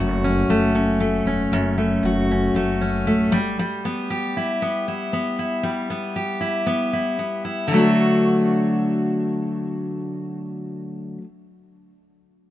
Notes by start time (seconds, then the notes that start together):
Already playing: F#1 F#2 A3
0.00 F#4
0.24 C#4
0.49 F#1 A3
0.75 C#4
1.00 A3
1.26 E1 C#4
1.52 F#1 F#2
1.78 A3
2.03 F#1 F#4
2.31 C#4
2.55 F#1 A3
2.81 C#4
3.06 A1 A3
3.32 G1 G3
3.59 G3
3.85 B3
4.10 G4
4.37 E4
4.62 B3
4.88 E4
5.13 B3
5.39 E4
5.63 G3
5.90 B3
6.16 G4
6.41 E4
6.66 B3
6.93 E4
7.19 B3
7.45 E4
7.68 D3 F#3
7.73 A3 D4
7.78 F#4